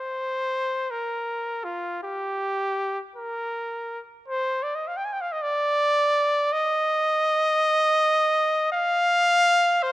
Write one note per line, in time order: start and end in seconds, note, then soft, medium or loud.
0.00 0.92 C5 medium
0.91 1.66 A#4 medium
1.64 2.03 F4 medium
2.03 2.99 G4 medium
3.16 4.00 A#4 medium
4.28 4.64 C5 loud
4.63 4.77 D5 medium
4.75 4.89 D#5 medium
4.88 4.99 F5 medium
4.97 5.07 G5 medium
5.05 5.14 G#5 medium
5.13 5.23 G5 medium
5.21 5.34 F5 medium
5.33 5.44 D#5 medium
5.42 6.54 D5 loud
6.53 8.72 D#5 loud
8.73 9.84 F5 loud
9.83 9.92 C5 loud